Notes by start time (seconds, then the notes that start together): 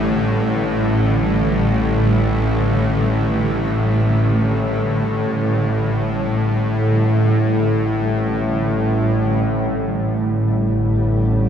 Already playing: A1 A2 D3 G3 A3 E4
9.45 A1 A2 E4